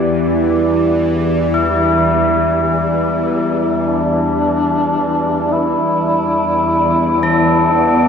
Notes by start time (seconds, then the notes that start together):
Already playing: E2 E3 E4 G4 D5
1.54 E4
3.86 D4
5.49 E2 E3 E4 D5
7.23 A4
7.73 B3